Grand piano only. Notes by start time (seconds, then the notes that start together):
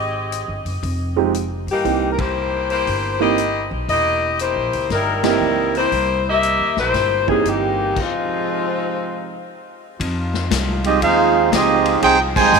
1.16 F3 G#3 C4 D#4 G4
1.84 E3 A#3 C4 D#4 G4
3.20 E3 A#3 C4 D#4 G4
5.23 E3 A#3 C4 G4 D#5
7.27 E3 A#3 C4 D#4 G4